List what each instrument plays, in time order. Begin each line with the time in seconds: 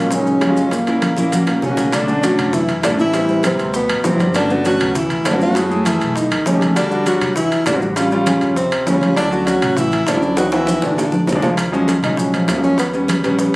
Already playing: upright bass A#1, trombone A#2, tenor saxophone A#3
0.10 trombone C#3, grand piano F#3 G#3 C#4 D#4, tenor saxophone C#4, high bongo, high conga, maracas
0.27 high bongo, high conga, maracas
0.41 upright bass F#1, high bongo, low bongo, high conga, high timbale, low timbale, maracas
0.48 grand piano F#3 G#3 C#4 F4
0.56 high bongo, maracas
0.71 trombone A#2, tenor saxophone A#3, high bongo, high conga, high timbale, maracas
0.87 grand piano A#3 C#4 E4, high bongo, high conga, high timbale, maracas
1.02 high bongo, high conga, high timbale, low timbale, maracas
1.16 upright bass A#1, grand piano A#3 C#4 E4, high bongo, high conga, maracas
1.32 grand piano A#3 C#4 F#4, high conga, high timbale, maracas
1.47 upright bass A#1, low bongo, high timbale, maracas
1.62 upright bass B1, trombone C#3, tenor saxophone C#4, low bongo, low conga, low timbale, maracas
1.70 grand piano A#3 C#4 F#4
1.77 low bongo, low conga, high timbale, maracas
1.92 trombone D3, grand piano A3 C#4 D4, tenor saxophone D4, high bongo, high conga, high timbale, maracas
2.08 grand piano A3 C#4 D4, high conga, maracas
2.23 trombone F#3, tenor saxophone F#4, high bongo, high conga, high timbale, low timbale, maracas
2.38 upright bass F#2, high bongo, high conga, low conga, high timbale, maracas
2.53 trombone E3, tenor saxophone E4, high bongo, high conga, low conga, maracas
2.68 high bongo, high conga, high timbale, maracas
2.83 upright bass A1, trombone D3, tenor saxophone D4, high bongo, low bongo, high conga, high timbale, low timbale, maracas
2.91 grand piano A3 C#4 D4
2.99 trombone E3, grand piano A3 C#4 E4, tenor saxophone E4, high bongo, high conga, maracas
3.14 grand piano G3 B3 C4, high bongo, high conga, high timbale, maracas
3.28 grand piano G3 B3 C4, high bongo, high conga, maracas
3.43 trombone C3, tenor saxophone C4, high bongo, high conga, high timbale, low timbale, maracas
3.59 upright bass D2, high bongo, high conga, high timbale, maracas
3.74 trombone B2, tenor saxophone B3, high bongo, high conga, maracas
3.89 upright bass A1, high bongo, high conga, high timbale, maracas
4.04 upright bass G1, trombone C3, tenor saxophone C4, high bongo, low bongo, high conga, low timbale, maracas
4.12 grand piano F#3 B3 C4 E4
4.19 grand piano F#3 B3 C4 D4, high conga, high timbale, maracas
4.34 trombone D3, grand piano A3 B3 C#4 F#4, tenor saxophone D4, high bongo, high conga, high timbale, maracas
4.49 grand piano A3 B3 C#4 F#4, high conga, maracas
4.64 trombone F#3, tenor saxophone F#4, high bongo, high conga, high timbale, low timbale, maracas
4.80 upright bass D2, high bongo, high conga, low conga, high timbale, maracas
4.95 trombone E3, tenor saxophone E4, high bongo, high conga, low conga, maracas
5.10 high bongo, high conga, high timbale, maracas
5.25 upright bass F#2, trombone D3, tenor saxophone D4, high bongo, low bongo, high conga, high timbale, low timbale, maracas
5.33 grand piano A3 B3 C#4 F#4
5.40 trombone F#3, grand piano A3 B3 C#4 F#4, tenor saxophone F#4, high bongo, high conga, maracas
5.55 grand piano A3 E4 G#4, high bongo, high conga, high timbale, maracas
5.70 grand piano A3 E4 G#4, high bongo, high conga, maracas
5.85 trombone E3, tenor saxophone E4, high bongo, high conga, high timbale, low timbale, maracas
6.00 upright bass B1, high bongo, high timbale, maracas
6.16 trombone D#3, tenor saxophone D#4, high bongo, high conga, maracas
6.30 upright bass D#2, high bongo, high conga, high timbale, maracas
6.46 upright bass E2, trombone C#3, tenor saxophone C#4, high bongo, low bongo, high conga, low timbale, maracas
6.53 grand piano A3 D#4 G4
6.60 grand piano A3 D#4 A4, high conga, high timbale, maracas
6.75 trombone D3, grand piano G3 D4 F#4, tenor saxophone D4, high bongo, high timbale, maracas
6.90 grand piano G3 D4 F#4, high conga, maracas
7.06 trombone F#3, tenor saxophone F#4, high bongo, high conga, high timbale, low timbale, maracas
7.21 upright bass E2, high bongo, high conga, low conga, high timbale, maracas
7.36 trombone E3, tenor saxophone E4, high bongo, high conga, maracas
7.51 high bongo, high conga, high timbale, maracas
7.66 upright bass A1, trombone D3, tenor saxophone D4, high bongo, low bongo, high conga, high timbale, low timbale, maracas
7.73 grand piano G3 D4 F#4
7.81 grand piano G3 D4 F#4, high bongo, high conga, maracas
7.96 grand piano G3 C#4 F4, high bongo, high conga, high timbale, maracas
8.11 grand piano G3 C#4 F4, high bongo, high conga, maracas
8.26 trombone C#3, tenor saxophone C#4, high bongo, high conga, high timbale, low timbale, maracas
8.41 upright bass F2, high bongo, high conga, high timbale, maracas
8.56 trombone C3, tenor saxophone C4, high bongo, high conga, maracas
8.71 upright bass D#2, high bongo, high conga, high timbale, maracas
8.86 upright bass D2, trombone C#3, tenor saxophone C#4, high bongo, low bongo, high conga, low timbale, maracas
8.93 grand piano G3 C#4 F4
9.01 grand piano G3 C#4 F4, high conga, high timbale, maracas
9.16 trombone D3, grand piano F#3 C#4 E4, tenor saxophone D4, high bongo, high timbale, maracas
9.31 grand piano F#3 C#4 F#4, high conga, maracas
9.46 trombone F#3, tenor saxophone F#4, high bongo, high conga, high timbale, low timbale, maracas
9.62 upright bass A1, high bongo, high conga, low conga, high timbale, maracas
9.77 trombone E3, tenor saxophone E4, high bongo, high conga, low conga, maracas
9.91 high bongo, high conga, high timbale, maracas
10.07 upright bass C#2, trombone D3, tenor saxophone D4, high bongo, low bongo, high conga, high timbale, low timbale, maracas
10.15 grand piano F#3 C#4 E4
10.22 grand piano F#3 C#4 E4, high bongo, high conga, maracas
10.37 grand piano E3 B3 D#4, trombone F#3, tenor saxophone F#4, high bongo, high conga, high timbale, maracas
10.52 grand piano E3 B3 F#4, trombone E3, tenor saxophone E4, high bongo, high conga, high timbale, maracas
10.67 high bongo, high conga, high timbale, maracas
10.82 upright bass A#1, trombone D3, tenor saxophone D4, low bongo, high conga, high timbale, maracas
10.97 high conga, low timbale, maracas
11.12 low bongo, high conga, maracas
11.27 upright bass D#2, low bongo, low timbale, maracas
11.32 grand piano F3 G#3 D4, low conga
11.42 grand piano F3 G#3 A#3, low bongo, low conga, low timbale, maracas
11.57 high bongo, high conga, high timbale, maracas
11.72 grand piano F3 F#3 G#3 C#4, high conga, maracas
11.88 high bongo, high conga, high timbale, low timbale, maracas
12.03 upright bass A#1, grand piano F3 F#3 G#3 C#4, tenor saxophone D#4, high bongo, high conga, low conga, high timbale, maracas
12.17 grand piano F3 F#3 G#3 C#4, tenor saxophone C#4, high bongo, high conga, maracas
12.33 tenor saxophone F3, high bongo, high conga, high timbale, maracas
12.48 upright bass D#2, tenor saxophone A#3, high bongo, low bongo, high conga, high timbale, low timbale, maracas
12.55 grand piano F3 F#3 G#3 C#4
12.63 tenor saxophone C#4, high bongo, high conga, maracas
12.78 tenor saxophone B3, high bongo, high conga, high timbale, maracas
12.93 grand piano G3 B3 C#4, high bongo, high conga, maracas
13.08 high bongo, high conga, high timbale, low timbale, maracas
13.24 upright bass A#1, grand piano G3 B3 C#4, high conga, high timbale, maracas
13.38 grand piano G3 B3 C#4, high bongo, high conga, maracas